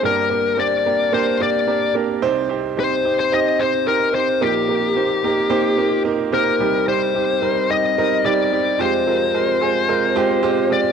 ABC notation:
X:1
M:4/4
L:1/16
Q:1/4=110
K:Cm
V:1 name="Lead electric guitar"
B4 d4 c2 d4 z2 | z4 c3 c e2 c2 B2 c2 | G12 z2 B2- | B2 c6 e4 d4 |
c12- c2 d2 |]
V:2 name="Upright piano"
[B,DGB]2 [B,DGB]2 [B,DGc]2 [B,DGB]2 [B,DGB]2 [B,DGB]2 [B,DGB]2 [B,DGB]2 | [CEGc]2 [CEGc]2 [CEGc]2 [CEGc]2 [CEGc]2 [CEGc]2 [CEGB]2 [CEGc]2 | [B,EGB]2 [B,EGB]2 [B,EGc]2 [B,EGB]2 [B,EGc]2 [B,EGB]2 [B,EGB]2 [B,EGc]2 | [G,CEG]2 [G,CEG]2 [G,CEG]2 [G,CEB]2 [G,CEG]2 [G,CEB]2 [G,CEG]2 [G,CEG]2 |
[A,CFG]2 [A,CFB]2 [A,CFB]2 [A,CFA]2 [A,CFB]2 [A,CFG]2 [A,CFG]2 [A,CFG]2 |]
V:3 name="Upright piano" clef=bass
[G,,,G,,]16 | [C,,C,]16 | [B,,,B,,]16 | [C,,C,]16 |
[F,,,F,,]16 |]